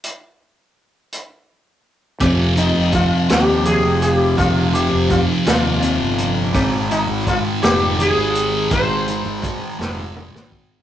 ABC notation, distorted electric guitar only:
X:1
M:6/8
L:1/8
Q:3/8=55
K:Fm
V:1 name="Distorted electric guitar" clef=bass
z6 | [F,,C,F,] [C,F,] [F,,C,F,] [F,,C,F,] [F,,C,F,]2 | [F,,C,F,] [C,F,] [F,,C,F,] [F,,C,F,] [F,,C,F,]2 | [A,,E,A,] [E,A,] [A,,E,A,] [A,,E,A,] [A,,E,A,]2 |
[A,,E,A,] [E,A,] [A,,E,A,] [A,,E,A,] [A,,E,A,]2 |]